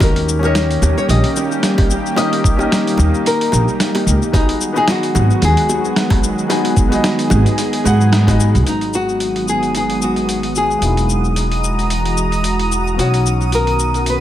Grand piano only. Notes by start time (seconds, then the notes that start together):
0.00 C#4 D#4 G4 A#4 D#5
0.39 C#4 D#4 G4
0.45 A#4 D#5
2.16 C#4 D#4 G4 A#4 D#5
2.57 C#4 D#4 G4
2.62 A#4 D#5
4.32 B3 D#4 F#4 G#4 D#5
4.72 B3 D#4 F#4
4.77 G#4 D#5
6.48 B3 D#4 F#4 G#4 G#5
6.88 B3 D#4 F#4
6.93 G#4 D#5
7.83 B3 D#4 F#4 G#4 F#5
8.26 B3 D#4 F#4 G#4 D#5
8.63 G#3 B3 D#4
8.68 F#4 B4
10.79 F#3 A#3 D#4
10.84 E4 G#4
12.94 F#3 B3 C#4
13.00 D#4 C#5